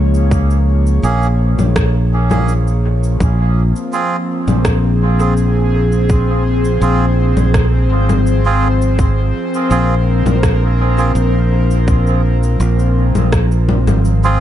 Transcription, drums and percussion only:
0.14 cabasa soft
0.31 kick loud
0.31 cabasa medium
0.50 cabasa soft
0.87 cabasa soft
1.04 cabasa soft
1.23 cabasa soft
1.59 low conga medium
1.59 cabasa soft
1.76 kick loud
1.76 cross-stick loud
1.76 cabasa soft
2.31 low conga medium
2.31 cabasa soft
2.48 cabasa medium
2.67 cabasa soft
3.03 cabasa soft
3.20 kick loud
3.20 cabasa soft
3.76 cabasa soft
3.93 cabasa medium
4.48 low conga medium
4.48 cabasa soft
4.65 kick loud
4.65 cross-stick medium
4.65 cabasa medium
5.20 cabasa soft
5.37 cabasa soft
5.92 cabasa soft
6.09 kick medium
6.09 cabasa soft
6.65 cabasa soft
6.82 cabasa soft
7.37 low conga medium
7.37 cabasa soft
7.54 kick loud
7.54 cross-stick medium
7.54 cabasa medium
8.09 low conga medium
8.09 cabasa soft
8.27 cabasa medium
8.82 cabasa soft
8.99 kick loud
8.99 cabasa medium
9.54 cabasa soft
9.71 cabasa soft
10.26 low conga medium
10.26 cabasa soft
10.43 kick loud
10.43 cross-stick medium
10.43 cabasa medium
10.98 cabasa soft
11.16 cabasa medium
11.71 cabasa soft
11.88 kick loud
11.88 cabasa medium
12.07 cabasa soft
12.43 cabasa soft
12.60 cabasa medium
12.79 cabasa soft
13.15 low conga medium
13.15 cabasa soft
13.32 kick loud
13.32 cross-stick medium
13.32 cabasa medium
13.51 cabasa soft
13.69 low conga medium
13.87 low conga medium
13.87 cabasa soft
14.05 cabasa medium
14.24 cabasa soft

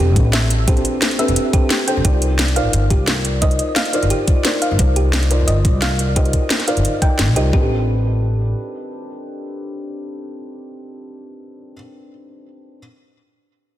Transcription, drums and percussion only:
0.16 kick loud
0.16 closed hi-hat medium
0.33 snare loud
0.33 closed hi-hat medium
0.50 closed hi-hat medium
0.68 kick loud
0.68 closed hi-hat medium
0.77 closed hi-hat soft
0.85 closed hi-hat medium
1.02 snare loud
1.02 closed hi-hat medium
1.11 closed hi-hat soft
1.19 closed hi-hat medium
1.28 closed hi-hat soft
1.36 closed hi-hat medium
1.53 kick loud
1.53 closed hi-hat medium
1.70 snare loud
1.70 closed hi-hat medium
1.88 closed hi-hat medium
2.05 kick loud
2.05 closed hi-hat medium
2.22 closed hi-hat medium
2.39 snare loud
2.39 closed hi-hat medium
2.48 closed hi-hat soft
2.56 closed hi-hat medium
2.73 closed hi-hat medium
2.90 kick loud
2.90 closed hi-hat medium
3.08 snare loud
3.08 closed hi-hat medium
3.25 closed hi-hat medium
3.42 kick loud
3.42 closed hi-hat medium
3.51 closed hi-hat soft
3.59 closed hi-hat medium
3.76 snare loud
3.76 closed hi-hat medium
3.85 closed hi-hat soft
3.93 closed hi-hat medium
4.03 closed hi-hat soft
4.10 closed hi-hat medium
4.28 kick loud
4.28 closed hi-hat medium
4.45 snare loud
4.45 closed hi-hat medium
4.62 closed hi-hat medium
4.79 kick loud
4.79 closed hi-hat medium
4.96 closed hi-hat medium
5.13 snare loud
5.13 closed hi-hat medium
5.23 closed hi-hat soft
5.31 closed hi-hat medium
5.48 closed hi-hat medium
5.65 kick loud
5.65 closed hi-hat medium
5.82 snare loud
5.82 closed hi-hat medium
5.99 closed hi-hat medium
6.16 kick loud
6.16 closed hi-hat medium
6.25 closed hi-hat soft
6.33 kick medium
6.33 closed hi-hat medium
6.50 snare loud
6.50 closed hi-hat medium
6.60 snare soft
6.60 closed hi-hat soft
6.68 closed hi-hat medium
6.77 closed hi-hat soft
6.85 closed hi-hat medium
7.02 kick loud
7.02 closed hi-hat medium
7.19 snare loud
7.19 closed hi-hat medium
7.36 closed hi-hat medium
7.53 kick loud

